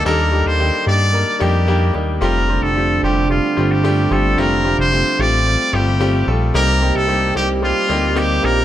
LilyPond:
<<
  \new Staff \with { instrumentName = "Muted trumpet" } { \time 4/4 \key f \mixolydian \tempo 4 = 111 bes'8. c''8. d''4 g'4 r8 | bes'8. a'8. g'8 f'8. g'8. a'8 | bes'8. c''8. d''4 g'4 r8 | bes'8. a'8. g'8 f'4 g'8 bes'8 | }
  \new Staff \with { instrumentName = "Grand piano" } { \time 4/4 \key f \mixolydian <g bes d' ees' a'>8 <g bes d' ees' g'>8 <g bes d' ees' g'>8 <g bes d' ees' g'>8 <g bes d' ees' bes'>8 <g bes d' ees' g'>8 <g bes d' ees' g'>8 <g bes d' ees' g'>8 | <g a c' f' g'>8 <g a c' f' g'>8 <g a c' f' g'>8 <g a c' f' g'>8 <g a c' f' g'>8 <g a c' f' g'>8 <g a c' f' g'>8 <g a c' f' g'>8 | <g a c' f' g'>8 <g a c' f' g'>8 <g a c' f' g'>8 <g a c' f' g'>8 <g a c' f' g'>8 <g a c' f' g'>8 <g a c' f' g'>8 <g a c' f' a'>8 | <g bes c' ees' g'>8 <g bes c' ees' g'>8 <g bes c' ees' g'>8 <g bes c' ees' g'>8 <g bes c' ees' g'>8 <g bes c' ees' g'>8 <g bes c' ees' g'>8 <g bes c' ees' g'>8 | }
  \new Staff \with { instrumentName = "Grand piano" } { \clef bass \time 4/4 \key f \mixolydian ees4. r2 r8 | r1 | r1 | c4. r2 r8 | }
  \new Staff \with { instrumentName = "French horn section" } { \time 4/4 \key f \mixolydian r1 | <d d'>1~ | <d d'>2 r8 <c c'>4 r8 | <g g'>1 | }
  \new Staff \with { instrumentName = "Analog synth bass" } { \clef bass \time 4/4 \key f \mixolydian ees,8. ees,8 r16 g,8. r16 f,4 ees,8 | f,,8. f,,8. f,,8. r16 g,,4 g,,8 | f,,8. f,,8 r16 a,,8. r16 g,,4 bes,,8 | c,8. c,8. c,8. r16 d,4 bes,,8 | }
>>